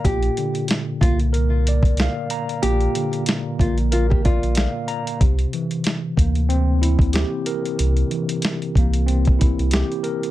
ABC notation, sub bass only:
X:1
M:4/4
L:1/16
Q:"Swing 16ths" 1/4=93
K:Bblyd
V:1 name="Sub bass" clef=bass
B,,,2 z4 C,,4- C,, C,,2 z3 | B,,,2 z4 B,,,4- B,,, B,,,2 z3 | C,,2 z4 D,,4- D,, D,,2 z3 | C,,2 z4 C,,4- C,, C,,2 z3 |]